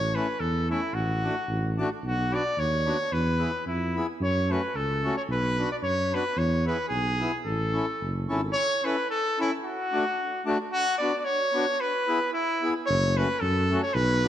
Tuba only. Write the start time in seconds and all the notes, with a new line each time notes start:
Already playing: A1
0.39 E2
0.93 A1
1.48 A1
2.03 B1
2.57 D#2
3.12 E2
3.66 F2
4.20 F#2
4.74 C#2
5.28 B1
5.82 F#2
6.37 E2
6.90 B1
7.45 A1
8.00 F#1
8.30 G#1
12.88 F#1
13.42 F#2
13.94 B1